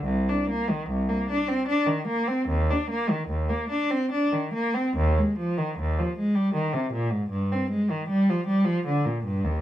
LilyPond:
\new Staff \with { instrumentName = "Cello" } { \clef bass \time 3/4 \key c \minor \tempo 4 = 75 c,16 d'16 bes16 ees16 c,16 bes16 d'16 c'16 d'16 ees16 bes16 c'16 | ees,16 d'16 bes16 ees16 ees,16 bes16 d'16 c'16 d'16 ees16 bes16 c'16 | ees,16 aes16 f16 ees16 ees,16 f16 aes16 g16 ees16 c16 bes,16 aes,16 | g,16 c'16 aes16 ees16 g16 f16 g16 f16 d16 bes,16 g,16 ees,16 | }